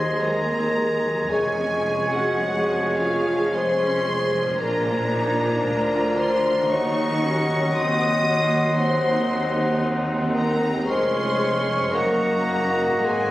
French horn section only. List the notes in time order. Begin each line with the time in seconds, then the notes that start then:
Already playing: C5
0.23 A#4
1.29 G#4
2.12 F#4
2.97 F4
3.54 C5
4.61 A#4
6.18 C5
6.70 C#5
7.73 D#5
8.79 C5
10.34 A#4
10.86 C5
11.91 A#4
13.05 G#4